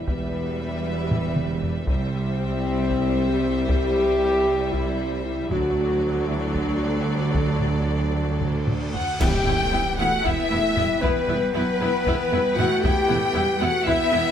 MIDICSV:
0, 0, Header, 1, 16, 480
1, 0, Start_track
1, 0, Key_signature, 1, "minor"
1, 0, Tempo, 517241
1, 69, Time_signature, 7, 3, 24, 8
1, 5589, Tempo, 528634
1, 8949, Tempo, 517241
1, 13208, End_track
2, 0, Start_track
2, 0, Title_t, "Flute"
2, 0, Program_c, 0, 73
2, 8245, Note_on_c, 0, 78, 55
2, 8464, Note_off_c, 0, 78, 0
2, 8488, Note_on_c, 0, 79, 80
2, 9185, Note_off_c, 0, 79, 0
2, 9196, Note_on_c, 0, 78, 74
2, 9452, Note_on_c, 0, 76, 89
2, 9466, Note_off_c, 0, 78, 0
2, 10145, Note_on_c, 0, 71, 72
2, 10159, Note_off_c, 0, 76, 0
2, 10631, Note_off_c, 0, 71, 0
2, 10647, Note_on_c, 0, 71, 86
2, 11590, Note_on_c, 0, 78, 78
2, 11604, Note_off_c, 0, 71, 0
2, 11828, Note_off_c, 0, 78, 0
2, 11834, Note_on_c, 0, 79, 81
2, 12540, Note_on_c, 0, 78, 87
2, 12554, Note_off_c, 0, 79, 0
2, 12793, Note_on_c, 0, 76, 96
2, 12807, Note_off_c, 0, 78, 0
2, 13208, Note_off_c, 0, 76, 0
2, 13208, End_track
3, 0, Start_track
3, 0, Title_t, "Violin section"
3, 0, Program_c, 1, 48
3, 71, Note_on_c, 1, 76, 52
3, 1712, Note_off_c, 1, 76, 0
3, 1764, Note_on_c, 1, 76, 58
3, 5080, Note_off_c, 1, 76, 0
3, 5106, Note_on_c, 1, 74, 62
3, 8197, Note_off_c, 1, 74, 0
3, 8233, Note_on_c, 1, 78, 58
3, 8458, Note_off_c, 1, 78, 0
3, 8478, Note_on_c, 1, 79, 77
3, 9180, Note_on_c, 1, 78, 80
3, 9195, Note_off_c, 1, 79, 0
3, 9424, Note_off_c, 1, 78, 0
3, 9434, Note_on_c, 1, 76, 93
3, 10152, Note_on_c, 1, 71, 75
3, 10155, Note_off_c, 1, 76, 0
3, 10605, Note_off_c, 1, 71, 0
3, 10616, Note_on_c, 1, 71, 87
3, 11566, Note_off_c, 1, 71, 0
3, 11596, Note_on_c, 1, 78, 93
3, 11835, Note_off_c, 1, 78, 0
3, 11842, Note_on_c, 1, 79, 76
3, 12544, Note_off_c, 1, 79, 0
3, 12550, Note_on_c, 1, 78, 91
3, 12779, Note_on_c, 1, 76, 101
3, 12786, Note_off_c, 1, 78, 0
3, 13208, Note_off_c, 1, 76, 0
3, 13208, End_track
4, 0, Start_track
4, 0, Title_t, "Violin section"
4, 0, Program_c, 2, 48
4, 67, Note_on_c, 2, 71, 53
4, 1710, Note_off_c, 2, 71, 0
4, 1740, Note_on_c, 2, 72, 66
4, 5068, Note_off_c, 2, 72, 0
4, 5110, Note_on_c, 2, 69, 62
4, 8199, Note_off_c, 2, 69, 0
4, 8234, Note_on_c, 2, 78, 58
4, 8459, Note_off_c, 2, 78, 0
4, 8488, Note_on_c, 2, 79, 86
4, 9185, Note_off_c, 2, 79, 0
4, 9190, Note_on_c, 2, 78, 78
4, 9428, Note_off_c, 2, 78, 0
4, 9446, Note_on_c, 2, 76, 79
4, 10159, Note_on_c, 2, 71, 74
4, 10161, Note_off_c, 2, 76, 0
4, 10614, Note_off_c, 2, 71, 0
4, 10625, Note_on_c, 2, 71, 85
4, 11570, Note_off_c, 2, 71, 0
4, 11586, Note_on_c, 2, 78, 77
4, 11827, Note_on_c, 2, 79, 82
4, 11830, Note_off_c, 2, 78, 0
4, 12536, Note_off_c, 2, 79, 0
4, 12551, Note_on_c, 2, 78, 81
4, 12790, Note_on_c, 2, 76, 100
4, 12792, Note_off_c, 2, 78, 0
4, 13208, Note_off_c, 2, 76, 0
4, 13208, End_track
5, 0, Start_track
5, 0, Title_t, "Woodwind section"
5, 0, Program_c, 3, 71
5, 8487, Note_on_c, 3, 79, 66
5, 8491, Note_on_c, 3, 71, 77
5, 8492, Note_on_c, 3, 64, 76
5, 13208, Note_off_c, 3, 64, 0
5, 13208, Note_off_c, 3, 71, 0
5, 13208, Note_off_c, 3, 79, 0
5, 13208, End_track
6, 0, Start_track
6, 0, Title_t, "French horn section"
6, 0, Program_c, 4, 60
6, 69, Note_on_c, 4, 59, 72
6, 541, Note_off_c, 4, 59, 0
6, 577, Note_on_c, 4, 59, 80
6, 1504, Note_off_c, 4, 59, 0
6, 1738, Note_on_c, 4, 60, 100
6, 3386, Note_off_c, 4, 60, 0
6, 3413, Note_on_c, 4, 67, 119
6, 4362, Note_off_c, 4, 67, 0
6, 4384, Note_on_c, 4, 64, 94
6, 4862, Note_off_c, 4, 64, 0
6, 4873, Note_on_c, 4, 64, 89
6, 5104, Note_on_c, 4, 66, 107
6, 5107, Note_off_c, 4, 64, 0
6, 5818, Note_on_c, 4, 64, 80
6, 5824, Note_off_c, 4, 66, 0
6, 6053, Note_on_c, 4, 62, 78
6, 6059, Note_off_c, 4, 64, 0
6, 6777, Note_off_c, 4, 62, 0
6, 6788, Note_on_c, 4, 62, 68
6, 7734, Note_off_c, 4, 62, 0
6, 8236, Note_on_c, 4, 66, 66
6, 8460, Note_off_c, 4, 66, 0
6, 8489, Note_on_c, 4, 67, 97
6, 9186, Note_off_c, 4, 67, 0
6, 9191, Note_on_c, 4, 66, 84
6, 9429, Note_off_c, 4, 66, 0
6, 9434, Note_on_c, 4, 64, 91
6, 10141, Note_off_c, 4, 64, 0
6, 10146, Note_on_c, 4, 59, 96
6, 10619, Note_off_c, 4, 59, 0
6, 10630, Note_on_c, 4, 59, 102
6, 11573, Note_off_c, 4, 59, 0
6, 11584, Note_on_c, 4, 66, 105
6, 11822, Note_on_c, 4, 67, 103
6, 11829, Note_off_c, 4, 66, 0
6, 12535, Note_on_c, 4, 66, 95
6, 12548, Note_off_c, 4, 67, 0
6, 12778, Note_off_c, 4, 66, 0
6, 12791, Note_on_c, 4, 64, 113
6, 13208, Note_off_c, 4, 64, 0
6, 13208, End_track
7, 0, Start_track
7, 0, Title_t, "Viola section"
7, 0, Program_c, 5, 48
7, 55, Note_on_c, 5, 55, 58
7, 1705, Note_off_c, 5, 55, 0
7, 1738, Note_on_c, 5, 55, 70
7, 5067, Note_off_c, 5, 55, 0
7, 5115, Note_on_c, 5, 54, 69
7, 8258, Note_off_c, 5, 54, 0
7, 8467, Note_on_c, 5, 64, 65
7, 8473, Note_on_c, 5, 59, 65
7, 8539, Note_off_c, 5, 64, 0
7, 8545, Note_off_c, 5, 59, 0
7, 8705, Note_on_c, 5, 59, 56
7, 8713, Note_on_c, 5, 64, 51
7, 8777, Note_off_c, 5, 59, 0
7, 8785, Note_off_c, 5, 64, 0
7, 8943, Note_on_c, 5, 59, 62
7, 8945, Note_on_c, 5, 64, 60
7, 9018, Note_off_c, 5, 59, 0
7, 9019, Note_off_c, 5, 64, 0
7, 9193, Note_on_c, 5, 64, 62
7, 9196, Note_on_c, 5, 59, 55
7, 9267, Note_off_c, 5, 64, 0
7, 9270, Note_off_c, 5, 59, 0
7, 9424, Note_on_c, 5, 59, 61
7, 9426, Note_on_c, 5, 64, 68
7, 9498, Note_off_c, 5, 59, 0
7, 9500, Note_off_c, 5, 64, 0
7, 9671, Note_on_c, 5, 64, 56
7, 9676, Note_on_c, 5, 59, 66
7, 9745, Note_off_c, 5, 64, 0
7, 9750, Note_off_c, 5, 59, 0
7, 9912, Note_on_c, 5, 59, 61
7, 9912, Note_on_c, 5, 64, 62
7, 9986, Note_off_c, 5, 59, 0
7, 9986, Note_off_c, 5, 64, 0
7, 10158, Note_on_c, 5, 64, 70
7, 10159, Note_on_c, 5, 59, 67
7, 10232, Note_off_c, 5, 64, 0
7, 10233, Note_off_c, 5, 59, 0
7, 10393, Note_on_c, 5, 64, 61
7, 10395, Note_on_c, 5, 59, 58
7, 10468, Note_off_c, 5, 64, 0
7, 10469, Note_off_c, 5, 59, 0
7, 10634, Note_on_c, 5, 59, 61
7, 10634, Note_on_c, 5, 64, 65
7, 10708, Note_off_c, 5, 59, 0
7, 10708, Note_off_c, 5, 64, 0
7, 10878, Note_on_c, 5, 59, 60
7, 10880, Note_on_c, 5, 64, 64
7, 10952, Note_off_c, 5, 59, 0
7, 10954, Note_off_c, 5, 64, 0
7, 11123, Note_on_c, 5, 59, 62
7, 11123, Note_on_c, 5, 64, 69
7, 11197, Note_off_c, 5, 59, 0
7, 11197, Note_off_c, 5, 64, 0
7, 11355, Note_on_c, 5, 64, 66
7, 11359, Note_on_c, 5, 59, 65
7, 11429, Note_off_c, 5, 64, 0
7, 11433, Note_off_c, 5, 59, 0
7, 11603, Note_on_c, 5, 64, 66
7, 11608, Note_on_c, 5, 59, 62
7, 11678, Note_off_c, 5, 64, 0
7, 11683, Note_off_c, 5, 59, 0
7, 11837, Note_on_c, 5, 59, 65
7, 11838, Note_on_c, 5, 64, 70
7, 11911, Note_off_c, 5, 59, 0
7, 11912, Note_off_c, 5, 64, 0
7, 12059, Note_on_c, 5, 64, 56
7, 12064, Note_on_c, 5, 59, 59
7, 12133, Note_off_c, 5, 64, 0
7, 12139, Note_off_c, 5, 59, 0
7, 12295, Note_on_c, 5, 59, 71
7, 12299, Note_on_c, 5, 64, 67
7, 12369, Note_off_c, 5, 59, 0
7, 12373, Note_off_c, 5, 64, 0
7, 12549, Note_on_c, 5, 64, 70
7, 12551, Note_on_c, 5, 59, 67
7, 12624, Note_off_c, 5, 64, 0
7, 12625, Note_off_c, 5, 59, 0
7, 12790, Note_on_c, 5, 64, 76
7, 12793, Note_on_c, 5, 59, 77
7, 12864, Note_off_c, 5, 64, 0
7, 12867, Note_off_c, 5, 59, 0
7, 13020, Note_on_c, 5, 59, 69
7, 13020, Note_on_c, 5, 64, 75
7, 13094, Note_off_c, 5, 59, 0
7, 13094, Note_off_c, 5, 64, 0
7, 13208, End_track
8, 0, Start_track
8, 0, Title_t, "Trombone section"
8, 0, Program_c, 6, 61
8, 74, Note_on_c, 6, 55, 56
8, 75, Note_on_c, 6, 64, 62
8, 1587, Note_off_c, 6, 55, 0
8, 1587, Note_off_c, 6, 64, 0
8, 1745, Note_on_c, 6, 55, 69
8, 1753, Note_on_c, 6, 64, 68
8, 5070, Note_off_c, 6, 55, 0
8, 5074, Note_off_c, 6, 64, 0
8, 5095, Note_on_c, 6, 54, 75
8, 5101, Note_on_c, 6, 62, 68
8, 8192, Note_off_c, 6, 54, 0
8, 8195, Note_off_c, 6, 62, 0
8, 8476, Note_on_c, 6, 52, 67
8, 8482, Note_on_c, 6, 59, 74
8, 13208, Note_off_c, 6, 52, 0
8, 13208, Note_off_c, 6, 59, 0
8, 13208, End_track
9, 0, Start_track
9, 0, Title_t, "Cello section"
9, 0, Program_c, 7, 48
9, 76, Note_on_c, 7, 40, 56
9, 1718, Note_off_c, 7, 40, 0
9, 1753, Note_on_c, 7, 36, 65
9, 5075, Note_off_c, 7, 36, 0
9, 5107, Note_on_c, 7, 38, 71
9, 8254, Note_off_c, 7, 38, 0
9, 8482, Note_on_c, 7, 55, 68
9, 8701, Note_off_c, 7, 55, 0
9, 8715, Note_on_c, 7, 57, 69
9, 8946, Note_on_c, 7, 55, 67
9, 8952, Note_off_c, 7, 57, 0
9, 9191, Note_off_c, 7, 55, 0
9, 9194, Note_on_c, 7, 57, 76
9, 9433, Note_on_c, 7, 59, 69
9, 9436, Note_off_c, 7, 57, 0
9, 9674, Note_on_c, 7, 57, 68
9, 9675, Note_off_c, 7, 59, 0
9, 9915, Note_off_c, 7, 57, 0
9, 9915, Note_on_c, 7, 55, 73
9, 10143, Note_off_c, 7, 55, 0
9, 10154, Note_on_c, 7, 55, 74
9, 10626, Note_off_c, 7, 55, 0
9, 10636, Note_on_c, 7, 54, 78
9, 11110, Note_on_c, 7, 52, 68
9, 11116, Note_off_c, 7, 54, 0
9, 11348, Note_on_c, 7, 55, 70
9, 11353, Note_off_c, 7, 52, 0
9, 11590, Note_on_c, 7, 57, 88
9, 11591, Note_off_c, 7, 55, 0
9, 12310, Note_on_c, 7, 55, 79
9, 12313, Note_off_c, 7, 57, 0
9, 12547, Note_on_c, 7, 57, 77
9, 12552, Note_off_c, 7, 55, 0
9, 12779, Note_on_c, 7, 59, 88
9, 12789, Note_off_c, 7, 57, 0
9, 13208, Note_off_c, 7, 59, 0
9, 13208, End_track
10, 0, Start_track
10, 0, Title_t, "Double bass section"
10, 0, Program_c, 8, 48
10, 67, Note_on_c, 8, 28, 54
10, 1714, Note_off_c, 8, 28, 0
10, 1741, Note_on_c, 8, 36, 65
10, 5069, Note_off_c, 8, 36, 0
10, 5103, Note_on_c, 8, 38, 73
10, 8252, Note_off_c, 8, 38, 0
10, 8470, Note_on_c, 8, 40, 73
10, 8543, Note_off_c, 8, 40, 0
10, 8710, Note_on_c, 8, 40, 65
10, 8782, Note_off_c, 8, 40, 0
10, 8948, Note_on_c, 8, 40, 68
10, 9022, Note_off_c, 8, 40, 0
10, 9184, Note_on_c, 8, 40, 59
10, 9258, Note_off_c, 8, 40, 0
10, 9429, Note_on_c, 8, 40, 61
10, 9503, Note_off_c, 8, 40, 0
10, 9676, Note_on_c, 8, 40, 63
10, 9751, Note_off_c, 8, 40, 0
10, 9914, Note_on_c, 8, 40, 69
10, 9988, Note_off_c, 8, 40, 0
10, 10147, Note_on_c, 8, 40, 73
10, 10221, Note_off_c, 8, 40, 0
10, 10386, Note_on_c, 8, 40, 64
10, 10461, Note_off_c, 8, 40, 0
10, 10626, Note_on_c, 8, 40, 65
10, 10700, Note_off_c, 8, 40, 0
10, 10862, Note_on_c, 8, 40, 68
10, 10936, Note_off_c, 8, 40, 0
10, 11109, Note_on_c, 8, 40, 68
10, 11184, Note_off_c, 8, 40, 0
10, 11345, Note_on_c, 8, 40, 70
10, 11420, Note_off_c, 8, 40, 0
10, 11584, Note_on_c, 8, 40, 74
10, 11659, Note_off_c, 8, 40, 0
10, 11825, Note_on_c, 8, 40, 71
10, 11899, Note_off_c, 8, 40, 0
10, 12069, Note_on_c, 8, 40, 69
10, 12143, Note_off_c, 8, 40, 0
10, 12313, Note_on_c, 8, 40, 75
10, 12387, Note_off_c, 8, 40, 0
10, 12556, Note_on_c, 8, 40, 66
10, 12630, Note_off_c, 8, 40, 0
10, 12790, Note_on_c, 8, 40, 73
10, 12864, Note_off_c, 8, 40, 0
10, 13028, Note_on_c, 8, 40, 80
10, 13102, Note_off_c, 8, 40, 0
10, 13208, End_track
11, 0, Start_track
11, 0, Title_t, "Timpani"
11, 0, Program_c, 10, 47
11, 8480, Note_on_c, 10, 40, 86
11, 9159, Note_off_c, 10, 40, 0
11, 13208, End_track
12, 0, Start_track
12, 0, Title_t, "Tuba"
12, 0, Program_c, 11, 58
12, 69, Note_on_c, 11, 28, 54
12, 1715, Note_off_c, 11, 28, 0
12, 1751, Note_on_c, 11, 36, 73
12, 4945, Note_off_c, 11, 36, 0
12, 5103, Note_on_c, 11, 38, 72
12, 8252, Note_off_c, 11, 38, 0
12, 8478, Note_on_c, 11, 28, 77
12, 8573, Note_off_c, 11, 28, 0
12, 8714, Note_on_c, 11, 28, 72
12, 8809, Note_off_c, 11, 28, 0
12, 8952, Note_on_c, 11, 28, 59
12, 9049, Note_off_c, 11, 28, 0
12, 9196, Note_on_c, 11, 28, 71
12, 9292, Note_off_c, 11, 28, 0
12, 9437, Note_on_c, 11, 28, 66
12, 9533, Note_off_c, 11, 28, 0
12, 9683, Note_on_c, 11, 28, 67
12, 9777, Note_off_c, 11, 28, 0
12, 9913, Note_on_c, 11, 28, 72
12, 10010, Note_off_c, 11, 28, 0
12, 10162, Note_on_c, 11, 28, 70
12, 10257, Note_off_c, 11, 28, 0
12, 10403, Note_on_c, 11, 28, 74
12, 10497, Note_off_c, 11, 28, 0
12, 10640, Note_on_c, 11, 28, 62
12, 10735, Note_off_c, 11, 28, 0
12, 10870, Note_on_c, 11, 28, 72
12, 10967, Note_off_c, 11, 28, 0
12, 11113, Note_on_c, 11, 28, 76
12, 11209, Note_off_c, 11, 28, 0
12, 11354, Note_on_c, 11, 28, 70
12, 11450, Note_off_c, 11, 28, 0
12, 11593, Note_on_c, 11, 28, 66
12, 11690, Note_off_c, 11, 28, 0
12, 11822, Note_on_c, 11, 28, 75
12, 11920, Note_off_c, 11, 28, 0
12, 12062, Note_on_c, 11, 28, 75
12, 12161, Note_off_c, 11, 28, 0
12, 12305, Note_on_c, 11, 28, 70
12, 12403, Note_off_c, 11, 28, 0
12, 12545, Note_on_c, 11, 28, 72
12, 12642, Note_off_c, 11, 28, 0
12, 12782, Note_on_c, 11, 28, 77
12, 12880, Note_off_c, 11, 28, 0
12, 13020, Note_on_c, 11, 28, 78
12, 13118, Note_off_c, 11, 28, 0
12, 13208, End_track
13, 0, Start_track
13, 0, Title_t, "Cymbal swell"
13, 0, Program_c, 12, 119
13, 6789, Note_on_c, 12, 60, 49
13, 8478, Note_off_c, 12, 60, 0
13, 13208, End_track
14, 0, Start_track
14, 0, Title_t, "Impact"
14, 0, Program_c, 13, 103
14, 8480, Note_on_c, 13, 60, 74
14, 10158, Note_off_c, 13, 60, 0
14, 13208, End_track
15, 0, Start_track
15, 0, Title_t, "Taiko and cinematic ensemble drums"
15, 73, Note_on_c, 9, 41, 85
15, 166, Note_off_c, 9, 41, 0
15, 1033, Note_on_c, 9, 45, 76
15, 1126, Note_off_c, 9, 45, 0
15, 1266, Note_on_c, 9, 47, 76
15, 1359, Note_off_c, 9, 47, 0
15, 1509, Note_on_c, 9, 43, 71
15, 1602, Note_off_c, 9, 43, 0
15, 1739, Note_on_c, 9, 41, 93
15, 1832, Note_off_c, 9, 41, 0
15, 2702, Note_on_c, 9, 41, 73
15, 2795, Note_off_c, 9, 41, 0
15, 3425, Note_on_c, 9, 41, 97
15, 3518, Note_off_c, 9, 41, 0
15, 4388, Note_on_c, 9, 41, 73
15, 4481, Note_off_c, 9, 41, 0
15, 5107, Note_on_c, 9, 41, 91
15, 5200, Note_off_c, 9, 41, 0
15, 6068, Note_on_c, 9, 41, 68
15, 6158, Note_off_c, 9, 41, 0
15, 6790, Note_on_c, 9, 41, 84
15, 6881, Note_off_c, 9, 41, 0
15, 7028, Note_on_c, 9, 45, 43
15, 7119, Note_off_c, 9, 45, 0
15, 7757, Note_on_c, 9, 45, 71
15, 7848, Note_off_c, 9, 45, 0
15, 7998, Note_on_c, 9, 45, 70
15, 8089, Note_off_c, 9, 45, 0
15, 8242, Note_on_c, 9, 43, 73
15, 8333, Note_off_c, 9, 43, 0
15, 8475, Note_on_c, 9, 41, 93
15, 8565, Note_off_c, 9, 41, 0
15, 8711, Note_on_c, 9, 45, 50
15, 8802, Note_off_c, 9, 45, 0
15, 9442, Note_on_c, 9, 41, 84
15, 9535, Note_off_c, 9, 41, 0
15, 9920, Note_on_c, 9, 45, 60
15, 10013, Note_off_c, 9, 45, 0
15, 10159, Note_on_c, 9, 41, 90
15, 10251, Note_off_c, 9, 41, 0
15, 10395, Note_on_c, 9, 45, 50
15, 10488, Note_off_c, 9, 45, 0
15, 11123, Note_on_c, 9, 41, 91
15, 11216, Note_off_c, 9, 41, 0
15, 11602, Note_on_c, 9, 45, 57
15, 11695, Note_off_c, 9, 45, 0
15, 11846, Note_on_c, 9, 41, 102
15, 11938, Note_off_c, 9, 41, 0
15, 12086, Note_on_c, 9, 45, 59
15, 12179, Note_off_c, 9, 45, 0
15, 12799, Note_on_c, 9, 41, 89
15, 12892, Note_off_c, 9, 41, 0
15, 13208, End_track
16, 0, Start_track
16, 0, Title_t, "Drums"
16, 8482, Note_on_c, 9, 35, 77
16, 8482, Note_on_c, 9, 49, 73
16, 8573, Note_off_c, 9, 35, 0
16, 8573, Note_off_c, 9, 49, 0
16, 13208, End_track
0, 0, End_of_file